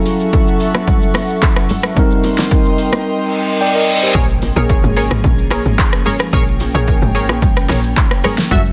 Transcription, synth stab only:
4.15 4.25 G#4 loud
4.15 4.25 A#4 medium
4.15 4.26 C#5 loud
4.56 4.93 G#4 medium
4.56 4.94 A#4 medium
4.56 4.94 C#5 medium
4.96 5.22 G#4 medium
4.96 5.22 A#4 medium
4.96 5.22 C#5 medium
5.51 5.62 G#4 medium
5.51 5.62 A#4 medium
5.51 5.62 C#5 medium
6.06 6.16 G#4 medium
6.06 6.16 A#4 medium
6.06 6.17 C#5 medium
6.33 6.44 G#4 loud
6.33 6.44 A#4 medium
6.33 6.44 C#5 loud
6.74 7.12 G#4 medium
6.74 7.12 A#4 medium
6.74 7.12 C#5 medium
7.15 7.40 G#4 medium
7.15 7.40 A#4 medium
7.15 7.40 C#5 medium
7.69 7.80 G#4 medium
7.69 7.80 A#4 medium
7.69 7.80 C#5 medium
8.24 8.34 G#4 medium
8.24 8.35 A#4 medium
8.24 8.35 C#5 medium
8.51 8.62 F#4 loud
8.51 8.62 A4 medium
8.51 8.62 E5 loud

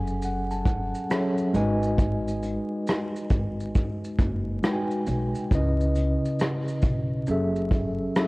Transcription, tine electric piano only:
0.00 0.12 F#3 medium
0.00 0.12 C#4 medium
0.00 0.13 G#4 medium
0.00 0.13 A4 medium
0.00 0.13 F#5 loud
0.00 0.19 G#5 medium
0.24 0.50 F#5 medium
0.51 0.65 A5 medium
0.65 1.06 F#5 medium
1.10 1.54 F#3 medium
1.10 1.54 C#4 medium
1.10 1.55 G#4 medium
1.10 1.55 A4 medium
1.10 1.55 C#5 medium
1.10 1.52 E5 medium
1.53 3.20 G#3 loud
1.53 3.21 D#4 medium
1.53 3.21 F#4 medium
1.53 3.21 B4 medium
1.53 1.95 D#5 medium
1.53 3.22 G#5 loud
4.63 5.46 G#3 medium
4.63 5.47 D#4 medium
4.63 5.47 F#4 medium
4.63 5.47 B4 medium
4.63 4.73 G5 medium
4.73 5.51 G#5 medium
5.52 7.18 C#3 medium
5.52 7.19 C#4 medium
5.52 7.19 E4 medium
5.52 7.19 B4 medium
5.52 7.20 D#5 loud
7.28 8.11 F#3 medium
7.28 8.11 C#4 medium
7.28 8.12 G#4 medium
7.28 8.12 A4 medium
7.28 8.13 E5 loud
8.17 8.28 F#3 medium
8.17 8.28 C#4 medium
8.17 8.28 G#4 medium
8.17 8.28 A4 medium
8.17 8.28 E5 medium

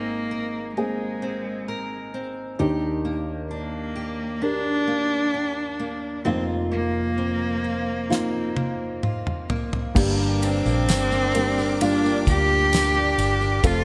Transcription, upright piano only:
0.00 2.10 G#1 soft
0.00 2.10 G#2 soft
0.00 0.23 A#3 medium
0.00 0.23 C4 medium
0.00 0.23 G#4 medium
0.77 2.50 A#3 medium
0.77 2.51 C4 soft
0.77 2.51 G#4 medium
2.59 6.22 D#2 medium
2.59 6.22 D#3 medium
2.59 4.33 D4 medium
2.59 4.33 D#4 medium
2.59 4.33 G4 medium
4.42 6.17 D4 medium
4.42 6.17 G4 soft
4.42 6.17 A#4 medium
6.25 9.91 F1 soft
6.25 9.91 F2 soft
6.25 8.00 A#3 medium
6.25 8.00 D#4 medium
6.25 8.01 F4 medium
8.09 9.86 A#3 medium
8.09 9.86 D#4 medium
8.09 9.87 F4 medium
9.95 11.30 G2 medium
9.95 11.27 G3 medium
9.95 11.27 A#3 medium
9.95 11.27 D4 medium
9.95 11.28 G4 medium
11.34 11.78 G3 medium
11.34 11.78 A#3 medium
11.34 11.79 D4 medium
11.34 11.79 A#4 medium
11.81 13.55 G3 medium
11.81 13.55 A#3 medium
11.81 13.55 D4 medium
11.81 13.55 F4 medium
13.63 13.84 A3 medium
13.63 13.84 C4 medium
13.63 13.84 F4 medium
13.63 13.84 A4 medium

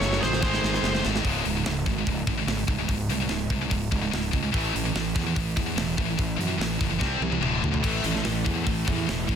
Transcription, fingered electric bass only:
0.00 0.19 F#1 medium
0.23 0.41 A1 medium
0.43 0.61 G#1 loud
0.63 0.81 G#1 medium
0.83 1.02 F#1 medium
1.05 1.23 G#1 medium
1.25 1.41 C#1 medium
1.46 1.62 C#1 medium
1.66 1.83 C#1 medium
1.86 2.03 G#1 medium
2.07 2.24 C#1 medium
2.27 2.44 G#1 medium
2.46 2.64 G#1 medium
2.68 2.85 C#1 medium
2.89 3.06 C#1 medium
3.08 3.26 C2 medium
3.29 3.47 C#1 medium
3.50 3.68 C2 medium
3.71 3.89 C#1 medium
3.92 4.09 C#1 medium
4.12 4.30 C#1 medium
4.33 4.50 C#2 medium
4.54 4.71 A1 loud
4.75 4.92 A1 medium
4.95 5.12 A1 medium
5.15 5.33 E2 medium
5.36 5.54 A1 loud
5.57 5.74 E2 medium
5.76 5.94 E1 medium
5.98 6.15 A1 medium
6.19 6.36 A1 medium
6.38 6.56 F#2 medium
6.59 6.77 A1 medium
6.80 6.98 F#1 medium
7.01 7.18 C2 medium
7.20 7.38 C2 medium
7.41 7.59 D1 medium
7.61 7.79 D2 medium
7.84 8.01 A1 medium
8.04 8.21 A1 medium
8.25 8.42 A1 medium
8.46 8.63 E2 medium
8.67 8.84 A1 medium
8.88 9.05 E2 medium
9.08 9.25 E1 medium
9.29 9.36 A1 medium

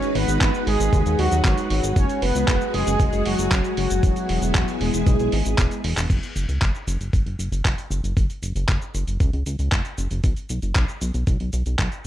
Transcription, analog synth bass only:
0.15 0.25 G#1 loud
0.28 0.38 G#1 medium
0.41 0.51 G#1 loud
0.67 0.77 G#1 medium
0.80 0.90 G#1 medium
0.93 1.03 D#2 loud
1.06 1.16 D#2 medium
1.19 1.29 D#2 medium
1.32 1.42 D#2 medium
1.44 1.55 G#1 loud
1.71 1.81 G#1 medium
1.83 1.93 G#1 medium
1.96 2.06 F#1 loud
2.22 2.32 F#1 loud
2.35 2.45 C#2 medium
2.48 2.58 F#1 loud
2.74 2.84 F#1 medium
2.87 2.97 F#1 medium
3.00 3.10 F#1 loud
3.13 3.23 F#1 medium
3.26 3.36 F#1 medium
3.39 3.49 F#1 medium
3.51 3.61 F#1 loud
3.77 3.87 F#1 medium
3.90 4.00 F#1 medium
4.03 4.13 E1 loud
4.29 4.39 E1 loud
4.42 4.52 E1 medium
4.55 4.65 E1 loud
4.81 4.91 E1 loud
4.94 5.04 E1 medium
5.07 5.17 B1 loud
5.20 5.30 B1 medium
5.33 5.43 G#1 medium
5.46 5.56 G#1 medium
5.58 5.68 E1 loud
5.84 5.94 E1 loud
5.97 6.07 E1 medium
6.10 6.20 F#1 medium
6.36 6.46 F#1 loud
6.49 6.59 C#2 medium
6.62 6.72 F#1 loud
6.87 6.98 F#1 medium
7.00 7.10 F#1 medium
7.13 7.23 F#1 loud
7.26 7.36 F#1 medium
7.39 7.49 F#1 medium
7.52 7.62 F#1 medium
7.65 7.75 F#1 loud
7.90 8.01 F#1 medium
8.04 8.14 F#1 medium
8.17 8.27 F#1 loud
8.42 8.53 F#1 medium
8.55 8.66 F#1 medium
8.69 8.79 F#1 loud
8.95 9.05 F#1 medium
9.07 9.17 F#1 medium
9.20 9.30 C#2 loud
9.33 9.43 C#2 medium
9.46 9.56 C#2 medium
9.59 9.69 C#2 medium
9.72 9.82 F#1 loud
9.98 10.08 F#1 medium
10.11 10.21 F#1 medium
10.24 10.34 B1 loud
10.50 10.60 B1 medium
10.63 10.73 F#1 medium
10.76 10.86 B1 loud
11.01 11.12 B1 medium
11.14 11.24 B1 medium
11.27 11.37 B1 loud
11.40 11.50 B1 medium
11.53 11.63 B1 medium
11.66 11.76 B1 medium
11.79 11.89 B1 loud

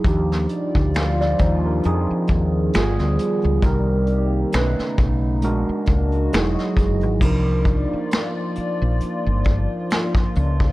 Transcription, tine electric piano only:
0.05 1.80 F3 medium
0.05 0.93 D4 medium
0.05 0.94 D#4 medium
0.05 0.94 G4 medium
0.95 1.18 F5 medium
1.21 1.39 F4 medium
1.21 1.39 D5 medium
1.41 1.64 D#4 medium
1.41 1.63 C5 medium
1.66 2.08 D4 medium
1.66 2.07 A#4 medium
1.85 2.74 F3 medium
1.85 2.74 C4 medium
1.85 2.74 D#4 medium
1.85 2.75 G#4 medium
2.74 3.63 G3 medium
2.74 3.64 B3 medium
2.74 3.64 F4 medium
2.74 3.64 G#4 medium
3.64 4.53 G3 medium
3.64 4.53 C4 medium
3.64 4.53 D#4 medium
3.64 4.54 A#4 medium
4.53 5.42 A3 medium
4.53 5.43 C#4 medium
4.53 4.60 D4 medium
4.53 5.43 B4 medium
4.61 5.46 D#4 medium
5.43 6.32 G#3 medium
5.43 6.32 D4 medium
5.43 6.32 F#4 medium
5.43 6.33 A#4 medium
6.32 7.22 F#3 medium
6.32 7.22 D#4 medium
6.32 7.22 E4 medium
6.32 7.22 G#4 medium
7.22 10.72 F3 medium
7.22 10.72 D4 medium
7.22 10.72 D#4 medium
7.22 10.72 A#4 medium

